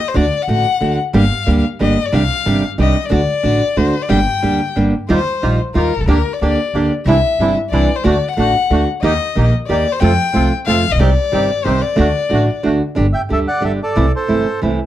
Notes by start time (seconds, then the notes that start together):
0.08 C5
0.14 D2 D3 A3 D4 F#4 D5
0.42 F#5
0.48 A1 D3 A3 D4 F#4 F#5
0.81 D2 D3 A3 D4 F#4
1.13 G1 D3 G3 A#3 D4 G4 F5
1.46 D2 D3 G3 A#3 D4 G4
1.79 G1 D3 G3 A#3 D4 G4 D#5
2.06 D5
2.12 C2 C3 D#3 G3 D4 G4 F5
2.46 G1 C3 D#3 G3 D4 G4
2.78 C2 C3 D#3 G3 D4 G4 D#5
3.05 D5
3.10 D2 D3 A3 D4 F#4 D5
3.43 A1 D3 A3 D4 F#4
3.77 D2 D3 A3 D4 F#4 C5
4.02 D5
4.09 G1 D3 G3 A#3 D4 G4 G5
4.42 D2 D3 G3 A#3 D4 G4
4.76 G1 D3 G3 A#3 D4 G4
5.09 D#2 D#3 G3 D#4 F4 G4 C5
5.42 A#1 D#3 G3 D#4 F4 G4
5.74 D#2 D#3 G3 D#4 F4 G4 A#4
5.96 B1 A4
6.01 C2 C#2
6.07 D2 D3 A#3 D4 G4 A#4
6.33 D5
6.41 D2 D3 A#3 D4 G4 D5
6.73 D2 D3 A#3 D4 G4
7.06 C2 C3 E3 G3 C4 D4 E4 E5
7.39 G1 C3 E3 G3 C4 D4 E4
7.70 C2 C3 E3 G3 C4 D4 E4 D5
7.96 C5
8.04 D2 D3 A3 D4 F#4 D5
8.28 F#5
8.36 A1 D3 A3 D4 F#4 F#5
8.70 D2 D3 A3 D4 F#4
9.01 D#2 D#3 A#3 D#4 G4 D#5
9.35 A#1 D#3 A#3 D#4 G4
9.68 D#2 D#3 A#3 D#4 G4 D5
9.92 C5
10.00 F2 C3 F3 A3 C4 F4 A4 G5
10.33 C2 C3 F3 A3 C4 F4 A4
10.66 F2 C3 F3 A3 C4 F4 A4 F5
10.88 A1 A#1 D#5
10.95 B1 C2 C3
11.00 D#3 G3 C4 D#4 G4 D5
11.32 G1 C3 D#3 G3 C4 D#4 G4
11.64 C2 C3 D#3 G3 C4 D#4 G4 C5
11.81 D5
11.96 D2 D3 A3 D4 F#4
12.29 A1 D3 A3 D4 F#4
12.63 D2 D3 A3 D4 F#4
12.95 G1 D3 G3 D4 G4
13.13 E5 G5
13.29 D2 D3 G3 D4 G4 A4 E5
13.48 D5 F#5
13.61 G1 D3 G3 D4 G4
13.65 A4 E5
13.83 A4 D5
13.96 C2 C3 E3 A3 C4 E4
14.16 A4 C5
14.28 G1 C3 E3 A3 C4 E4
14.61 C2 C3 E3 A3 C4 E4